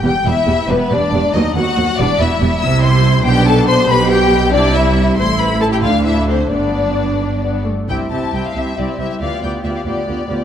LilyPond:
<<
  \new Staff \with { instrumentName = "Violin section" } { \time 6/8 \key e \minor \tempo 4. = 93 g''8 e''4 b'8 d''4 | dis''8 fis''4 d''8 e''4 | \key c \major e'''8 c'''4 g''8 a''8 c'''8 | b''8 g''4 d''8 e''4 |
c'''8 b''8 a''16 g''16 f''8 e''8 c''8 | d''2~ d''8 r8 | g''8 a''8 g''16 f''16 e''8 d''8 e''16 e''16 | f''8 g''8 e''16 f''16 d''4. | }
  \new Staff \with { instrumentName = "Violin section" } { \time 6/8 \key e \minor g'8 e'4 b8 d'4 | dis'8 fis'4 d'8 e'4 | \key c \major e''8 c''4 g'8 a'8 c''8 | b'8 g'4 d'8 e'4 |
c''8 b'8 a'16 g'16 f'8 e'8 c'8 | d'2~ d'8 r8 | <g' e''>8 <g' e''>8 <g' e''>8 <g' e''>8 <g' e''>8 <g' e''>8 | <g' d''>8 <g' d''>8 <g' d''>8 <g' d''>8 <g' d''>8 <g' d''>8 | }
  \new Staff \with { instrumentName = "Viola section" } { \time 6/8 \key e \minor <g b>8 <g b>8 <g b>8 <g b>8 <g b>8 <g b>8 | <fis b>8 <fis b>8 <fis b>8 <g b>8 <g b>8 <g b>8 | \key c \major <g e'>4. <b d'>4. | <g g'>4. <g e'>4. |
<a e'>4. <a d'>4. | <b d'>4. d'8 b8 a8 | <c' e'>8 <c' e'>8 <c' e'>8 <c' e'>8 <c' e'>8 <c' e'>8 | <b f'>8 <b f'>8 <b f'>8 <b f'>8 <b f'>8 <b f'>8 | }
  \new Staff \with { instrumentName = "Cello section" } { \clef bass \time 6/8 \key e \minor e,8 e,8 e,8 e,8 e,8 e,8 | dis,8 dis,8 dis,8 e,8 e,8 e,8 | \key c \major c4. b,4. | b,4. c4. |
a,4. d,4. | g,2~ g,8 r8 | c,8 c,8 c,8 c,8 c,8 c,8 | d,8 d,8 d,8 d,8 d,8 d,8 | }
  \new Staff \with { instrumentName = "Double bass section" } { \clef bass \time 6/8 \key e \minor e,,8 e,,8 e,,8 e,,8 e,,8 e,,8 | dis,8 dis,8 dis,8 e,,8 e,,8 e,,8 | \key c \major c,4. b,,4. | b,,4. c,4. |
a,,4. d,4. | g,,2~ g,,8 r8 | c,8 c,8 c,8 c,8 c,8 c,8 | d,8 d,8 d,8 d,8 d,8 d,8 | }
>>